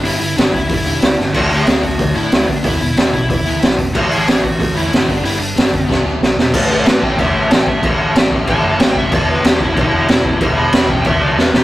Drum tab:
CC |--------|x-------|--------|x-------|
HH |ooooooo-|-ooooooo|oooooooo|-ooooooo|
SD |--o---oo|--o---o-|--o---o-|--o---o-|
BD |---oo---|o--oo--o|o--oo--o|o--oo--o|

CC |--------|x-x-x-x-|x-x-x-x-|x-x-x-x-|
HH |oooo----|--------|--------|--------|
SD |--o-o-oo|--o---o-|--o---o-|--o---o-|
BD |---oo---|o--oo--o|o--oo--o|o--oo--o|

CC |x-x-x---|
HH |--------|
SD |--o---oo|
BD |o--oo---|